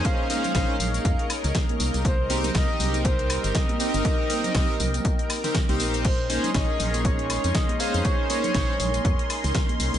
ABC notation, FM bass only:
X:1
M:4/4
L:1/16
Q:"Swing 16ths" 1/4=120
K:Bbdor
V:1 name="FM bass" clef=bass
z4 B,,, z B,,, z F,, z2 D,, z2 C,, C,,- | C,,4 C,, z C,,4- C,, G,,, z3 G,,, | z4 C,, z C,, z6 C,, B,,,2- | B,,,3 z B,,, z B,,,4- B,,, F,, z3 F,, |
z4 B,,, z B,,, z F,, z2 D,, z2 C,, C,, |]